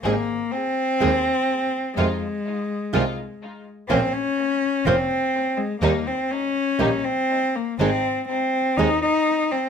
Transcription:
<<
  \new Staff \with { instrumentName = "Cello" } { \time 4/4 \key aes \major \tempo 4 = 124 bes4 c'2. | aes2.~ aes8 r8 | c'8 des'4. c'4. aes8 | bes8 c'8 des'4. c'4 bes8 |
c'4 c'4 ees'8 ees'4 c'8 | }
  \new Staff \with { instrumentName = "String section" } { \time 4/4 \key aes \major <bes c' aes'>8 r4. <bes c' aes'>8 r4. | <aes ees' f'>8 r4. <aes ees' f'>8 r4. | <bes c' des'>8 r4. <bes c' des'>8 r4. | <g bes ees'>8 r4. <g bes ees'>8 r4. |
<aes c' ees'>8 r4. <aes c' ees'>8 r4. | }
  \new Staff \with { instrumentName = "Nylon-string guitar" } { \time 4/4 \key aes \major <ees aes c' aes'>8 r4. <ees aes c' aes'>8 r4. | <c ees aes c' f'>8 r4. <c ees aes c' f'>8 r4. | <f bes des' f' c''>8 r4. <f bes des' f' c''>8 r4. | <ees g bes ees' g'>8 r4. <ees g bes ees' g'>8 r4. |
<ees aes c' ees' aes'>8 r4. <ees aes c' ees' aes'>8 r4. | }
  \new Staff \with { instrumentName = "Double bass" } { \clef bass \time 4/4 \key aes \major aes,,8 r4. ees,8 r4. | f,8 r4. c,8 r4. | bes,,8 r4. f,,8 r4. | ees,8 r4. bes,,8 r4. |
aes,,8 r4. ees,8 r4. | }
>>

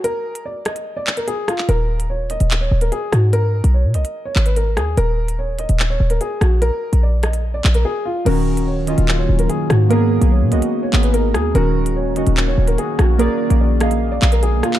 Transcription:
<<
  \new Staff \with { instrumentName = "Grand piano" } { \time 4/4 \key ees \minor \tempo 4 = 146 bes'4 d''8 ees''8. d''8 bes'16 aes'8 f'8 | bes'4 des''8 ees''8. des''8 bes'16 aes'8 ges'8 | bes'4 des''8 ees''8. des''8 ces''16 bes'8 aes'8 | bes'4 des''8 ees''8. des''8 bes'16 aes'8 ges'8 |
bes'4 d''8 ees''8. d''8 bes'16 aes'8 f'8 | bes'4 des''8 ees''8. des''8 bes'16 aes'8 ges'8 | bes'4 des''8 ees''8. des''8 ces''16 bes'8 aes'8 | bes'4 des''8 ees''8. des''8 bes'16 aes'8 ges'8 |
bes'4 d''8 ees''8. d''8 bes'16 aes'8 f'8 | }
  \new Staff \with { instrumentName = "Synth keys" } { \time 4/4 \key ees \minor r1 | r1 | r1 | r1 |
r1 | <ees des' ges'>4~ <ees des' ges'>16 r16 <ees des' f'>4.~ <ees des' f'>16 r8. | <bes ces' aes'>8. <bes ces' aes'>8. <bes ces' ges'>4 <bes ces' aes'>4~ <bes ces' aes'>16 r16 | <ees des' ges'>4~ <ees des' ges'>16 r16 <ees des' ges'>4.~ <ees des' ges'>16 r8. |
<bes aes' d''>8. <bes aes' d''>8. <bes aes' f''>4 <bes aes' f''>4~ <bes aes' f''>16 r16 | }
  \new Staff \with { instrumentName = "Ambient pad" } { \time 4/4 \key ees \minor r1 | r1 | r1 | r1 |
r1 | <ees ges bes des'>1 | <aes ees' aes' bes'>1 | <ees bes des' ges'>1 |
<d aes bes>1 | }
  \new Staff \with { instrumentName = "808-style bass" } { \clef bass \time 4/4 \key ees \minor r1 | ees,,4.~ ees,,16 ees,,8. ees,,8 r8 aes,8~ | aes,8. ces,8 ces16 ces,16 r8. aes,,4 ees,8 | ees,,4.~ ees,,16 ees,,8. ees,,8 r8 bes,,8~ |
bes,,16 r8 bes,,4.~ bes,,16 bes,,8 r4 | ees,,4.~ ees,,16 ees,,8. ees,,8 r8 aes,8~ | aes,8. ces,8 ces16 ces,16 r8. aes,,4 ees,8 | ees,,4.~ ees,,16 ees,,8. ees,,8 r8 bes,,8~ |
bes,,16 r8 bes,,4.~ bes,,16 bes,,8. ces,16 r8 | }
  \new DrumStaff \with { instrumentName = "Drums" } \drummode { \time 4/4 hh8. hh16 r8 <hh ss>16 hh16 r8 hc16 hh16 hh8 <hh ss>16 hc16 | hh8. hh16 r8 hh16 hh16 hc8. hh16 hh8 <hh ss>8 | hh8. hh16 r8 hh16 hh16 r8 hc16 hh16 hh8 <hh ss>8 | hh8. hh16 r8 hh16 hh16 hc8. hh16 hh8 <hh ss>8 |
hh8. hh16 r8 <hh ss>16 hh16 r8 hc16 hh16 r4 | <cymc hh>8. hh16 r8 hh16 hh16 hc8. hh16 hh8 <hh ss>8 | hh8. hh16 r8 hh16 hh16 r8 hc16 hh16 hh8 <hh ss>8 | hh8. hh16 r8 hh16 hh16 hc8. hh16 hh8 <hh ss>8 |
hh8. hh16 r8 <hh ss>16 hh16 r8 hc16 hh16 hh8 <hh ss>16 hc16 | }
>>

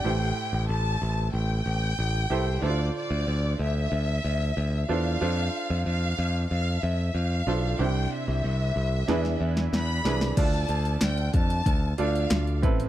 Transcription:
<<
  \new Staff \with { instrumentName = "Violin section" } { \time 4/4 \key d \dorian \tempo 4 = 93 g''4 a''4 g''2 | d''8 d''4 e''2 f''8~ | f''4 f''4 f''8 e''8 f''4 | g''8 e''2~ e''8 b''4 |
a''4 g''8 a''4 f''4 r8 | }
  \new Staff \with { instrumentName = "Upright piano" } { \time 4/4 \key d \dorian <e' g' a' c''>4.~ <e' g' a' c''>16 r4. r16 <e' g' a' c''>8 | <d' e' f' a' c''>4.~ <d' e' f' a' c''>16 r4. r16 <d' f' a' c''>8 | <d' f' a' c''>4.~ <d' f' a' c''>16 r4. r16 <d' f' a' c''>8 | <d' e' g' c''>4.~ <d' e' g' c''>16 r16 <d' e' gis' b'>4. <d' e' gis' b'>8 |
<d' f' a' d''>4.~ <d' f' a' d''>16 r8. <d' f' a' d''>4 <c' e' a' b'>8 | }
  \new Staff \with { instrumentName = "Upright piano" } { \clef bass \time 4/4 \key d \dorian a,4. r2 r8 | d4. r2 r8 | r1 | c4. r8 e4. r8 |
d4. r2 a,8 | }
  \new Staff \with { instrumentName = "Picked electric bass" } { \clef bass \time 4/4 \key d \dorian a,,8 r16 a,,16 a,,8 a,,8 a,,8 a,,8 a,,8 c,8 | d,8 r16 d,16 d,8 d,8 d,8 d,8 d,8 e,8 | f,8 r16 f,16 f,8 f,8 f,8 f,8 f,8 b,,8 | c,8 r16 c,16 c,8 c,8 e,8 e,8 e,8 c,8 |
d,8 d,8 d,8 f,8 d,8 d,8 d,8 a,,8 | }
  \new DrumStaff \with { instrumentName = "Drums" } \drummode { \time 4/4 r4 r4 r4 r4 | r4 r4 r4 r4 | r4 r4 r4 r4 | r4 r4 sn16 sn8 sn16 sn8 sn16 sn16 |
<cymc hh bd>16 hh16 hh16 hh16 <hc hh sn>16 hh16 <hh bd>16 hh16 <hh bd>8 hh16 hh16 <hc hh sn>16 hh16 <hh bd>16 hh16 | }
>>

